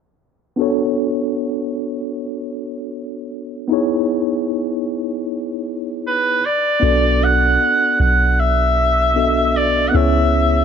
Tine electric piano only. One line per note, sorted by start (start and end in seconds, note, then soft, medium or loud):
0.56 3.65 B3 medium
0.56 3.66 D4 medium
0.56 3.66 F#4 medium
0.60 3.67 A4 medium
0.60 3.68 C#5 medium
3.68 6.38 B3 medium
3.68 6.38 D#4 medium
3.68 6.39 E4 medium
3.72 6.40 G#4 medium
3.72 6.41 C#5 medium
6.80 9.11 B3 medium
6.80 9.11 D4 medium
6.80 9.12 F#4 medium
6.84 9.13 A4 medium
6.84 9.13 D5 medium
9.15 9.90 B3 soft
9.15 9.94 D4 soft
9.15 9.94 F#4 soft
9.15 9.94 A4 soft
9.15 9.23 D#5 soft
9.24 9.98 E5 medium
9.91 10.65 B3 medium
9.91 10.65 C#4 medium
9.91 10.65 E4 medium
9.95 10.65 G#4 medium
9.95 10.65 C#5 medium